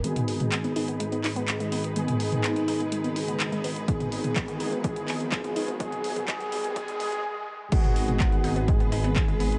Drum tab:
CC |----------------|----------------|----------------|----------------|
HH |xxoxxxoxxxoxxxox|xxoxxxoxxxoxxxox|xxoxxxoxxxoxxxox|xxoxxxoxxxox----|
CP |----x-----x-x---|----x-------x---|----x-----x-x---|----x-----------|
T2 |-o-o------------|-o-o------------|-o-o------------|-o-o------------|
BD |----------------|----------------|o---o---o---o---|o---o---o-------|

CC |x---------------|
HH |xxoxxxoxxxoxxxox|
CP |----x-------x---|
T2 |-o-o------------|
BD |o---o---o---o---|